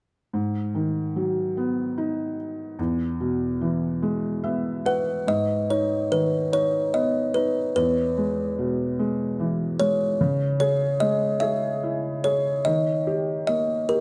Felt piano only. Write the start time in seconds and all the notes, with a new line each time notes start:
0.33 G#2
0.75 D#3
1.16 F#3
1.57 B3
1.98 D#4
2.79 E2
3.20 B2
3.61 E3
4.02 G#3
4.44 B3 E5
4.86 F#5
5.27 G#2
5.70 D#4
6.11 D#3
6.52 D#4
6.94 B3
7.35 D#4
7.76 E2
8.18 G#3
8.59 B2
8.99 G#3
9.40 E3
9.80 G#3
10.21 C#3
10.61 G#4
11.02 G#3
11.42 G#4
11.83 E4
12.25 G#4
12.66 D#3
13.07 G4
13.48 A#3
13.89 G4